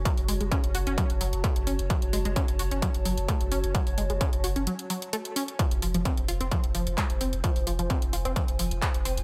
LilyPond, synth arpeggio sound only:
\new Staff \with { instrumentName = "Synth arpeggio sound" } { \clef bass \time 4/4 \key ges \lydian \tempo 4 = 130 ges16 r16 aes16 aes16 des'16 r16 ges'16 des'16 ges16 r16 ges16 r16 a16 r16 des'16 r16 | ges16 r16 aes16 aes16 des'16 r16 ges'16 des'16 ges16 r16 ges16 r16 a16 r16 des'16 r16 | ges16 r16 aes16 aes16 des'16 r16 ges'16 des'16 ges16 r16 ges16 r16 a16 r16 des'16 r16 | f16 r16 f16 f16 c'16 r16 f'16 c'16 f16 r16 f16 r16 aes16 r16 c'16 r16 |
f16 r16 f16 f16 c'16 r16 f'16 c'16 f16 r16 f16 r16 aes16 r16 c'16 r16 | }